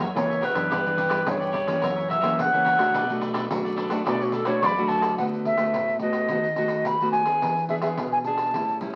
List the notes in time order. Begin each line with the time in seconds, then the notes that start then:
Already playing: F#2
0.00 pandeiro
0.15 C#2 C#3 E3 A#3 C#4 C#5, pandeiro
0.30 A#4 C#5 E5, pandeiro
0.41 F#4 A#4 B4 C#5 E5, pandeiro
0.54 F#2 E3 B3 D4 A#4 C#5 E5, pandeiro
0.70 G2 E4 G4 B4 D5, pandeiro
0.86 E3 B3 D4, pandeiro
0.97 E4 G4 B4 D5, pandeiro
1.09 G2 E4 G4 B4 D5, pandeiro
1.26 G2 E3 B3 D4 C#5, pandeiro
1.39 G4 B4 D5, pandeiro
1.51 E4 G4 B4 D5, pandeiro
1.67 E3 A#3 C#4, pandeiro
1.81 F#2 F#4 A#4 C#5 E5, pandeiro
1.96 A#4 C#5 E5, pandeiro
2.08 F#4 A#4 C#5 E5, pandeiro
2.21 E3 A#3 C#4 F#4 A#4 C#5 E5, pandeiro
2.38 C#2 C#3 F#5, pandeiro
2.52 E3 A#3 C#4 A#4 C#5 E5, pandeiro
2.64 F#4 A#4 C#5 E5, pandeiro
2.77 C#2 A3 D4 F#4 A#4 C#5 E5, pandeiro
2.94 B1 B2 D4 A4 B4 D5, pandeiro
3.09 A3 D4 F#4, pandeiro
3.20 D4 A4 B4 D5, pandeiro
3.33 B1 D4 A4 B4 D5, pandeiro
3.50 B1 F#2 A3 D4 F#4, pandeiro
3.64 A4 B4 D5, pandeiro
3.76 D4 A4 B4 D5, pandeiro
3.90 A3 D4 F#4, pandeiro
4.05 B2 A3 D4 F#4 A4 B4 D5, pandeiro
4.20 F#4 A4 B4 D5, pandeiro
4.32 D4 A4 B4 D5, pandeiro
4.45 A3 D4 F#4 A4 B4 C#5 D5, pandeiro
4.61 E2 F#2 D5 C#6, pandeiro
4.66 B5
4.76 A3 D4 F#4 A4 B4 D5, pandeiro
4.87 D2 D4 A4 B4 D5 A5, pandeiro
5.00 A4 B4 D5, pandeiro
5.18 D3 A3 B3 F#4 F#5, pandeiro
5.33 pandeiro
5.45 E5, pandeiro
5.57 A3 B3 F#4, pandeiro
5.74 A2, pandeiro
5.88 pandeiro
5.99 A3 B3 F#4 D#5, pandeiro
6.13 pandeiro
6.28 D#3 A3 B3 F#4, pandeiro
6.44 pandeiro
6.56 A3 B3 F#4, pandeiro
6.68 pandeiro
6.85 D#3 B5, pandeiro
7.01 A3 B3 F#4, pandeiro
7.12 G#5, pandeiro
7.26 B3 D4 G#4, pandeiro
7.42 E3, pandeiro
7.57 pandeiro
7.69 B3 D4 G#4 E5, pandeiro
7.82 B3 D4 G#4 E5, pandeiro
7.97 B2, pandeiro
8.12 G#5, pandeiro
8.24 B3 D4 G#4 A5, pandeiro
8.38 pandeiro
8.54 A2 G3 C#4 E4, pandeiro
8.69 pandeiro
8.81 G3 C#4 E4, pandeiro